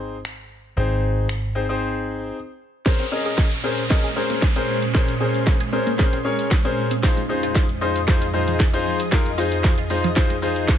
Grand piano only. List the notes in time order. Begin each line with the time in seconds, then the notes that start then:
Already playing: C4 D#4 G#4 C5
0.77 C4 D#4 G#4 C5
1.55 C4 D#4 G#4 C5
1.69 C4 D#4 G#4 C5
2.86 C#4 G#4 A#4 C5
3.12 C#4 G#4 A#4 D#5
3.64 C#4 G#4 A#4 C5
3.90 C#4 G#4 A#4 D#5
4.16 C#4 G#4 A#4 C5
4.56 C#4 G#4 A#4 C5
4.94 C#4 G#4 A#4 C5
5.20 C#4 G#4 A#4 C5
5.73 C#4 G#4 A#4 C5
5.99 C#4 G#4 A#4 C5
6.25 C#4 G#4 A#4 C#5
6.65 C#4 G#4 A#4 C5
7.03 D#4 F4 G#4 C5
7.29 D#4 F4 G#4 C5
7.81 D#4 F4 G#4 C5
8.07 D#4 F4 G#4 C5
8.33 D#4 F4 G#4 C5
8.73 D#4 F4 G#4 C5
9.12 D#4 F4 G#4 A#4
9.38 D#4 F4 G#4 C5
9.90 D#4 F4 G#4 C5
10.16 D#4 F4 G#4 C5
10.42 D#4 F4 G#4 C5